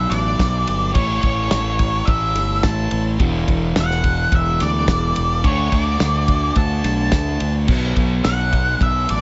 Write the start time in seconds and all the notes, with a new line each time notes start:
Already playing: B2 F#3 B3 E5
0.10 A1 D5, snare, ride
0.39 B1, kick, snare, ride
0.67 G1, ride
0.93 A1 A2 E3 A3 C#5, kick, ride
1.22 A1 C#5, kick, ride
1.51 A1, snare, ride
1.79 kick, ride
2.05 A1 E5, kick, ride
2.35 G1, snare, ride
2.63 A1 A5, kick, snare, ride
2.91 A1, ride
3.19 E1 E2 B2 E3, kick, ride
3.48 E1, kick, ride
3.76 E1, snare, ride
3.80 F#5
3.91 snare
4.04 kick, ride
4.32 E1 E5, kick, ride
4.60 D2 D5, snare, ride
4.88 E1, kick, snare, ride
5.16 E1, ride
5.44 D2 D3 A3 D4 C#5, kick, ride
5.72 D2 D5, kick, ride
6.00 D2, snare, ride
6.28 kick, ride
6.56 D2 A5, kick, ride
6.84 B1, snare, ride
7.12 D2 A5, kick, snare, ride
7.40 D2, ride
7.68 B1 B2 F#3 B3, kick, crash
7.96 B1, kick, ride
8.24 B1 F#5, snare, ride
8.53 kick, ride
8.81 B1 E5, kick, ride
9.09 A1 D5, ride